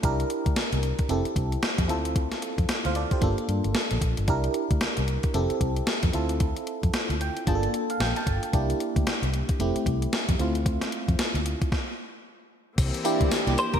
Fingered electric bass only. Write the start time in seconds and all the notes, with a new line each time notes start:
0.04 C2
0.46 D2
0.56 muted fingered electric bass stroke
0.73 C2
1.09 F1
1.36 C2
1.78 F2
1.89 D2
2.58 F2
2.69 muted fingered electric bass stroke
2.85 D2
3.22 G1
3.48 G2
3.65 G1
3.91 A#1
4.02 A#1
4.18 G1
4.28 C2
4.71 D2
4.98 C2
5.34 F1
5.61 C2
6.03 F2
6.14 D2
6.84 F2
6.93 muted fingered electric bass stroke
7.10 D2
7.47 G1
8.00 A#1
8.27 G1
8.53 C2
8.96 D2
9.22 C2
9.59 F1
9.86 C2
10.29 F2
10.39 D2
11.08 F2
11.19 muted fingered electric bass stroke
11.34 D2
12.78 C2
13.21 D2
13.47 C2
13.74 C2